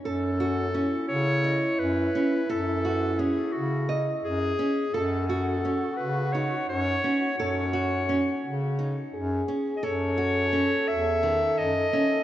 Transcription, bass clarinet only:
\new Staff \with { instrumentName = "Bass clarinet" } { \clef bass \time 7/8 \key fis \dorian \tempo 4 = 86 fis,4. cis4 fis,8 r8 | fis,4. cis4 fis,8 r8 | fis,4. cis4 fis,8 r8 | fis,4. cis4 fis,8 r8 |
fis,4. e,4 fis,8 r8 | }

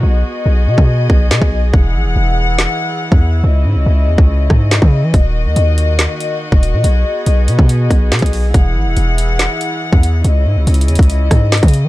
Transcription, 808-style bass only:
\new Staff \with { instrumentName = "808-style bass" } { \clef bass \time 4/4 \key ces \major \tempo 4 = 141 b,,8 r8 b,,8 b,16 b,8. b,,8 b,16 b,,8. | e,,8 gis,,16 e,,16 e,,4~ e,,16 r4 e,8. | des,8 aes,16 des,16 des,8 fes,16 des,8. aes,8. des8 fes16 | ees,,8. ees,16 ees,4~ ees,16 r4 ees,,8 bes,16 |
b,,8 r8 b,,8 b,16 b,8. b,,8 b,16 b,,8. | e,,8 gis,,16 e,,16 e,,4~ e,,16 r4 e,8. | des,8 aes,16 des,16 des,8 fes,16 des,8. aes,8. des8 fes16 | }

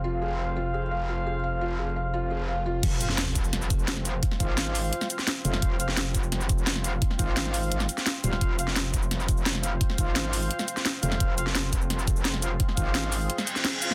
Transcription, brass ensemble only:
\new Staff \with { instrumentName = "Brass ensemble" } { \time 4/4 \key f \minor \tempo 4 = 172 <f' c'' f''>1~ | <f' c'' f''>1 | r8 <f' c'' f''>8 r2 r8 <f' c'' f''>8 | r8 <f' c'' f''>2 <f' c'' f''>8 r8 <f' c'' f''>8~ |
<f' c'' f''>8 <f' c'' f''>8 r2 r8 <f' c'' f''>8 | r8 <f' c'' f''>2 r4 <f' c'' f''>8~ | <f' c'' f''>8 <f' c'' f''>8 r2 r8 <f' c'' f''>8 | r8 <f' c'' f''>2 <f' c'' f''>8 r8 <f' c'' f''>8~ |
<f' c'' f''>8 <f' c'' f''>8 r2 r8 <f' c'' f''>8 | r8 <f' c'' f''>2 r4 <f' c'' f''>8 | }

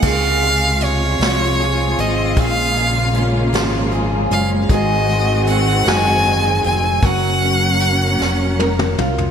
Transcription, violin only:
\new Staff \with { instrumentName = "Violin" } { \time 6/8 \key des \major \tempo 4. = 51 f''4 des''4. ees''8 | f''4 r4. f''8 | ees''4 ges''8 aes''4 aes''8 | ges''2~ ges''8 r8 | }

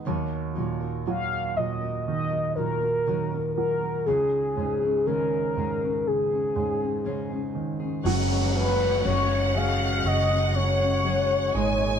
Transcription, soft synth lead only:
\new Staff \with { instrumentName = "Soft synth lead" } { \time 4/4 \key fis \major \tempo 4 = 60 r4 eis''8 dis''8 dis''8 ais'4 ais'8 | gis'4 ais'4 gis'4. r8 | r8 b'8 cis''8 eis''8 dis''8 cis''4. | }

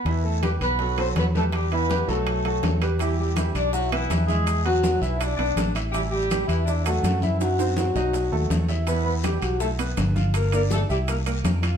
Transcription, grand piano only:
\new Staff \with { instrumentName = "Grand piano" } { \time 4/4 \key e \minor \tempo 4 = 163 <e e' e''>4 <g g' b'>4 <fis fis' a'>8 <fis fis' a'>4 <g g' b'>8~ | <g g' b'>8 <e e' e''>8 <g g' b'>8 <fis fis' a'>4 <fis fis' a'>4 <g g' b'>8 | <e e'>4 <g g'>4 <e' e''>8 <b b'>4 <e' e''>8~ | <e' e''>8 <b b'>4 <e' e''>4 <b b'>4 <e' e''>8 |
<e e'>4 <g g'>4 <e' e''>8 <a a'>4 <e' e''>8~ | <e' e''>8 <c' c''>4 <dis' dis''>4 <a a'>4 <e' e''>8 | <e e'>4 <g g'>4 <e' e''>8 <b b'>4 <f' f''>8~ | <f' f''>8 <d' d''>4 <e' e''>4 <bes bes'>4 <f' f''>8 | }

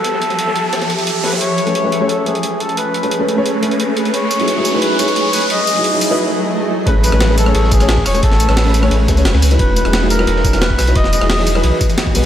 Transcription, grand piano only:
\new Staff \with { instrumentName = "Grand piano" } { \time 4/4 \key a \lydian \tempo 4 = 176 <e' f'>1 | r8. <a cis' gis' b'>8 <a cis' gis' b'>8 <a cis' gis' cis''>8. <a cis' gis' b'>16 r4 r16 | r8. <a cis' gis' b'>8 <a cis' gis' b'>8 <a cis' gis' cis''>8. <a cis' gis' b'>16 r4 r16 | r8. <fis dis' e' gis'>8 <fis dis' e' gis'>8 <fis dis' e' b'>8. <fis dis' e' gis'>16 r4 r16 |
r8. <fis dis' e' gis'>8 <fis dis' e' gis'>8 <fis dis' e' b'>16 r2 | <a cis' gis' b'>8. <a cis' gis' b'>8 <a cis' gis' b'>8 <a cis' gis' cis''>8. <a cis' gis' b'>16 <a cis' gis' cis''>16 r8. <a cis' gis' cis''>16~ | <a cis' gis' cis''>8. <a cis' gis' b'>8 <a cis' gis' b'>8 <a cis' gis' cis''>8. <a cis' gis' b'>16 <a cis' gis' cis''>16 r8. <fis dis' e' b'>16~ | <fis dis' e' b'>8. <fis dis' e' gis'>8 <fis dis' e' gis'>8 <fis dis' e' b'>8. <fis dis' e' gis'>16 <fis dis' e' b'>16 r8. <fis dis' e' b'>16~ |
<fis dis' e' b'>8. <fis dis' e' gis'>8 <fis dis' e' gis'>8 <fis dis' e' b'>8. r4 <g b fis' b'>8 | }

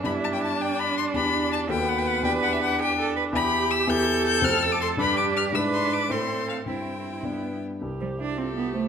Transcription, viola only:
\new Staff \with { instrumentName = "Viola" } { \time 6/8 \key e \minor \tempo 4. = 108 d'2.~ | d'4. b4. | d'2. | \key c \major g'2. |
a'4. d'4. | d'4. c'4. | c'4. b4 r8 | g'4. g'4. | }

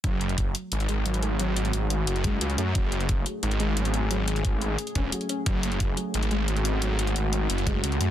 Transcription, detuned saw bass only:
\new Staff \with { instrumentName = "Detuned saw bass" } { \clef bass \time 4/4 \key fis \minor \tempo 4 = 177 fis,,4. r8 gis,,2~ | gis,,2 fis,,4 cis,8 fis,8 | fis,,4. r8 gis,,2~ | gis,,2 r8 e,,8 r4 |
fis,,4. r8 gis,,2~ | gis,,2 fis,,4 cis,8 fis,8 | }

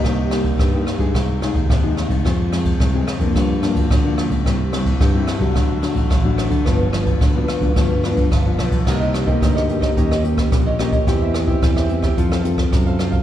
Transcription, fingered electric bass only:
\new Staff \with { instrumentName = "Fingered electric bass" } { \clef bass \time 4/4 \key c \minor \tempo 4 = 109 c,4 g,8 r16 g,16 c,8. ees,16 ees,8. c,16 | f,4 c,8 r16 f,16 g,8. d,16 d,8. des,16 | c,4 g,8 r16 c,16 d,8. a,,16 a,,8. d16 | g,,4 d,8 r16 d,16 d,8. d,16 g,,8 b,,8 |
c,4 d,4 ees,4 bes,,4 | e,4 e,4 f,4 fis,4 | }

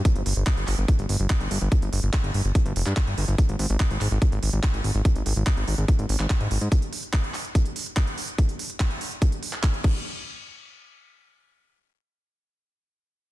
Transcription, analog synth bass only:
\new Staff \with { instrumentName = "Analog synth bass" } { \clef bass \time 4/4 \key aes \lydian \tempo 4 = 144 r16 g,,16 g,,16 g,,16 r16 g,,16 g,,16 g,,16 r16 g,,16 g,,16 g,,16 r16 g,,16 g,,16 g,,16 | r16 g,,16 g,,16 g,,16 r16 g,,16 g,,16 g,,16 r16 g,,16 f,,16 g,16 r16 g,,16 g,,16 g,,16 | r16 aes,,16 aes,,16 aes,,16 r16 aes,,16 aes,,16 aes,,16 r16 aes,,16 aes,,16 aes,,16 r16 aes,,16 aes,,16 aes,,16 | r16 aes,,16 aes,,16 aes,,16 r16 aes,,16 aes,,16 aes,,16 r16 aes,,16 aes,,16 aes,,16 r16 aes,16 aes,,16 aes,16 |
r1 | r1 | r1 | r1 | }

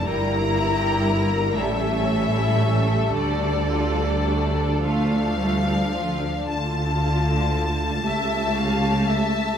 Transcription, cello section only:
\new Staff \with { instrumentName = "Cello section" } { \clef bass \time 6/8 \key d \minor \tempo 4. = 38 g,4. a,4. | d4. a8 g8 f8 | d4. cis4. | }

